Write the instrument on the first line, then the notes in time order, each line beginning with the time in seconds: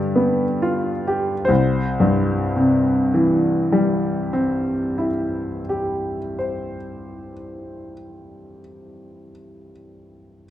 grand piano
Already playing: G2 D3 G3 D5
0.16 B3
0.62 F4
1.07 G4
1.45 C2 C5
2.00 G2
2.56 C3
3.14 E3
3.72 G3
4.33 C4
4.98 E4
5.69 G4
6.39 C5